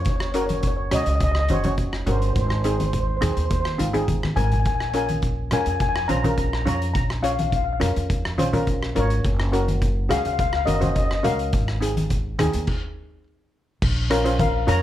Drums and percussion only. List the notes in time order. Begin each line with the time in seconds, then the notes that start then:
0.05 kick, closed hi-hat
0.20 cross-stick
0.34 closed hi-hat
0.49 closed hi-hat, high conga
0.63 kick, closed hi-hat
0.91 cross-stick, closed hi-hat, low conga
1.06 closed hi-hat
1.20 kick, closed hi-hat
1.35 cross-stick
1.48 closed hi-hat, high conga
1.64 closed hi-hat, high conga, low conga
1.78 kick, closed hi-hat
1.93 cross-stick
2.07 closed hi-hat, low conga
2.22 closed hi-hat
2.36 kick, closed hi-hat
2.50 cross-stick
2.64 closed hi-hat
2.80 closed hi-hat, high conga
2.93 kick, closed hi-hat
3.22 cross-stick, closed hi-hat, high conga, low conga
3.37 closed hi-hat
3.50 kick, closed hi-hat
3.65 cross-stick
3.79 closed hi-hat, high conga
3.94 closed hi-hat, high conga
4.08 kick, closed hi-hat, high conga
4.23 cross-stick, high conga
4.37 closed hi-hat, low conga
4.52 closed hi-hat, low conga
4.65 kick, closed hi-hat
4.80 cross-stick
4.94 closed hi-hat
5.09 closed hi-hat, high conga
5.22 kick, closed hi-hat
5.51 cross-stick, closed hi-hat, low conga
5.66 closed hi-hat
5.80 kick, closed hi-hat
5.96 cross-stick
6.09 closed hi-hat, high conga
6.24 closed hi-hat, high conga, low conga
6.38 kick, closed hi-hat
6.53 cross-stick
6.67 closed hi-hat, low conga
6.82 closed hi-hat
6.95 kick, closed hi-hat
7.10 cross-stick
7.24 closed hi-hat
7.39 closed hi-hat, high conga
7.52 kick, closed hi-hat
7.81 cross-stick, closed hi-hat, low conga
7.96 closed hi-hat
8.10 kick, closed hi-hat
8.25 cross-stick
8.38 closed hi-hat, high conga
8.53 closed hi-hat, high conga, low conga
8.67 kick, closed hi-hat
8.83 cross-stick
8.96 closed hi-hat, low conga
9.10 closed hi-hat
9.24 kick, closed hi-hat
9.40 cross-stick
9.53 closed hi-hat
9.68 closed hi-hat, high conga
9.82 kick, closed hi-hat
10.10 cross-stick, closed hi-hat, low conga
10.25 closed hi-hat
10.39 kick, closed hi-hat
10.53 cross-stick
10.67 closed hi-hat, high conga
10.82 closed hi-hat, high conga, low conga
10.96 kick, closed hi-hat
11.11 cross-stick
11.24 closed hi-hat, low conga
11.39 closed hi-hat
11.53 kick, closed hi-hat
11.68 cross-stick
11.82 closed hi-hat
11.97 closed hi-hat, high conga
12.10 kick, closed hi-hat
12.39 cross-stick, closed hi-hat, high conga, low conga
12.53 closed hi-hat
12.67 kick, crash
13.82 kick, crash
14.11 cross-stick, closed hi-hat
14.26 closed hi-hat
14.39 kick, closed hi-hat, high conga
14.68 closed hi-hat, low conga